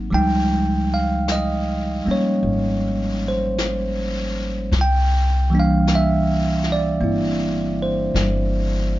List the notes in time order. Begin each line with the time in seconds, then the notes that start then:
Already playing: F#3 A#3 C4 D#4
0.10 C#2 F3 G3 G#3 G5, brush sweep
0.15 D#4
0.94 F5
1.28 D#5, brush sweep, snare, hi-hat pedal
2.05 G3 A#3 C#4, muted upright bass stroke
2.11 C#5
2.43 G#1, brush sweep
3.28 C5
3.58 brush sweep, snare, hi-hat pedal
4.72 C2, brush sweep, snare
4.81 G5
5.50 E3 G3 A#3
5.55 D4
5.60 F5
5.87 brush sweep, snare, hi-hat pedal
5.95 E5
6.64 snare
6.72 D5
7.00 G1 A#3 C4 E4, brush sweep
7.82 C5
8.14 G1, brush sweep, snare, hi-hat pedal